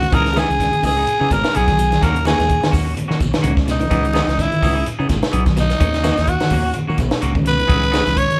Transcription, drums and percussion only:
0.01 closed hi-hat, high conga, shekere
0.11 kick, closed hi-hat, low conga, shekere
0.26 snare, closed hi-hat, shekere
0.33 snare, closed hi-hat, high conga
0.38 shekere
0.50 closed hi-hat, shekere
0.60 kick, snare, closed hi-hat, shekere
0.71 closed hi-hat, high conga, shekere
0.83 kick, open hi-hat, low conga, shekere
1.07 closed hi-hat, shekere
1.21 shekere
1.31 kick, closed hi-hat, high conga, shekere
1.44 snare, closed hi-hat
1.55 closed hi-hat, shekere
1.68 kick, snare, closed hi-hat, high conga, shekere
1.79 closed hi-hat, high conga, shekere
1.91 snare, closed hi-hat, high conga, shekere
2.02 kick, snare, closed hi-hat, low conga, shekere
2.16 closed hi-hat, shekere
2.25 snare, closed hi-hat, high conga, shekere
2.39 snare, closed hi-hat, low conga, shekere
2.50 kick, closed hi-hat, shekere
2.61 snare, closed hi-hat, high conga, shekere
2.72 kick, open hi-hat, low conga, shekere
2.88 shekere
2.97 closed hi-hat, high conga, shekere
3.11 snare, shekere
3.20 kick, closed hi-hat, high conga, shekere
3.33 snare, closed hi-hat, high conga, shekere
3.44 closed hi-hat, low conga, shekere
3.57 kick, snare, shekere
3.68 snare, closed hi-hat, shekere
3.80 closed hi-hat, low conga, shekere
3.91 kick, closed hi-hat, low conga, shekere
4.05 closed hi-hat, shekere
4.13 snare, closed hi-hat, high conga, shekere
4.29 snare, closed hi-hat, shekere
4.39 kick, snare, closed hi-hat, shekere
4.51 closed hi-hat, high conga, shekere
4.62 kick, open hi-hat, low conga, shekere
4.77 shekere
4.86 closed hi-hat, shekere
4.99 shekere
5.09 kick, snare, closed hi-hat, high conga, shekere
5.23 snare, closed hi-hat, shekere
5.33 closed hi-hat, shekere
5.46 kick, snare, closed hi-hat, high conga, shekere
5.57 snare, closed hi-hat, high conga, shekere
5.69 snare, closed hi-hat, shekere
5.81 kick, closed hi-hat, low conga, shekere
5.93 snare, closed hi-hat, shekere
6.04 snare, closed hi-hat, high conga, shekere
6.17 snare, closed hi-hat
6.27 kick, closed hi-hat, shekere
6.40 snare, closed hi-hat, high conga, shekere
6.50 kick, open hi-hat, low conga, shekere
6.65 shekere
6.74 closed hi-hat, high conga, shekere
6.89 shekere
6.98 kick, closed hi-hat, high conga, shekere
7.11 snare, closed hi-hat, shekere
7.22 closed hi-hat, shekere
7.35 kick, high conga, shekere
7.46 closed hi-hat, high conga, shekere
7.59 closed hi-hat, high conga, shekere
7.69 kick, closed hi-hat, low conga, shekere
7.83 closed hi-hat, shekere
7.93 snare, closed hi-hat, high conga, shekere
8.06 snare, closed hi-hat
8.17 kick, closed hi-hat, shekere
8.30 closed hi-hat, high conga, shekere

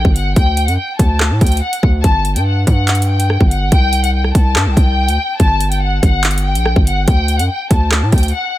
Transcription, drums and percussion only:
0.05 kick
0.16 closed hi-hat
0.36 kick, closed hi-hat
0.57 closed hi-hat
0.68 closed hi-hat
0.99 kick, closed hi-hat
1.20 cross-stick, clap
1.41 kick, closed hi-hat
1.47 closed hi-hat
1.52 closed hi-hat
1.57 closed hi-hat
1.73 closed hi-hat
1.83 kick
2.04 kick, closed hi-hat
2.25 closed hi-hat
2.36 closed hi-hat
2.67 kick, closed hi-hat
2.88 clap, closed hi-hat
2.95 closed hi-hat
3.02 closed hi-hat
3.20 closed hi-hat
3.30 cross-stick
3.40 kick
3.51 closed hi-hat
3.72 kick, closed hi-hat
3.93 closed hi-hat
4.04 closed hi-hat
4.24 cross-stick
4.35 kick, closed hi-hat
4.56 cross-stick, clap
4.77 kick, closed hi-hat
5.08 closed hi-hat
5.40 kick, closed hi-hat
5.61 closed hi-hat
5.72 closed hi-hat
6.03 kick, closed hi-hat
6.24 clap, closed hi-hat
6.31 closed hi-hat
6.38 closed hi-hat
6.55 closed hi-hat
6.66 cross-stick
6.76 kick
6.87 closed hi-hat
7.08 kick, closed hi-hat
7.28 closed hi-hat
7.39 closed hi-hat
7.71 kick, closed hi-hat
7.92 cross-stick, clap
8.12 kick, closed hi-hat
8.18 closed hi-hat
8.23 closed hi-hat
8.28 closed hi-hat

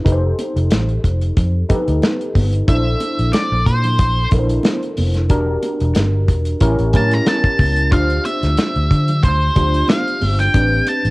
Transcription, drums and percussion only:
0.06 kick, closed hi-hat, muted conga
0.39 closed hi-hat, muted conga
0.56 closed hi-hat
0.71 snare, closed hi-hat, high conga
0.89 closed hi-hat
1.04 kick, closed hi-hat
1.21 closed hi-hat
1.37 kick, closed hi-hat
1.69 kick, closed hi-hat, muted conga, low conga
1.88 closed hi-hat
2.02 snare, closed hi-hat, high conga
2.21 closed hi-hat
2.35 kick, open hi-hat, high conga
2.53 closed hi-hat
2.68 kick, closed hi-hat, muted conga
3.00 closed hi-hat, muted conga
3.19 closed hi-hat
3.33 snare, closed hi-hat, high conga
3.66 kick, closed hi-hat
3.84 closed hi-hat, low conga
3.98 kick, closed hi-hat
4.31 kick, closed hi-hat, muted conga, low conga
4.49 closed hi-hat
4.63 snare, closed hi-hat, high conga
4.83 closed hi-hat
4.97 open hi-hat, high conga
5.14 snare, closed hi-hat
5.30 kick, closed hi-hat, muted conga
5.63 closed hi-hat, muted conga
5.81 closed hi-hat
5.95 snare, closed hi-hat, high conga
6.28 kick, closed hi-hat
6.45 closed hi-hat
6.61 kick, closed hi-hat
6.79 closed hi-hat
6.93 kick, closed hi-hat, muted conga, low conga
7.11 snare, closed hi-hat
7.26 snare, closed hi-hat, high conga
7.44 kick, closed hi-hat
7.59 kick, open hi-hat, high conga
7.77 closed hi-hat
7.92 kick, closed hi-hat
8.10 closed hi-hat
8.25 closed hi-hat, muted conga
8.43 snare, closed hi-hat
8.57 snare, closed hi-hat, high conga
8.76 closed hi-hat
8.91 kick, closed hi-hat
9.08 closed hi-hat, low conga
9.23 kick, closed hi-hat
9.56 kick, closed hi-hat, muted conga, low conga
9.74 closed hi-hat
9.88 snare, closed hi-hat, high conga
10.07 closed hi-hat
10.21 open hi-hat, high conga
10.39 snare, closed hi-hat
10.54 kick, closed hi-hat, muted conga
10.87 closed hi-hat, muted conga
11.05 closed hi-hat

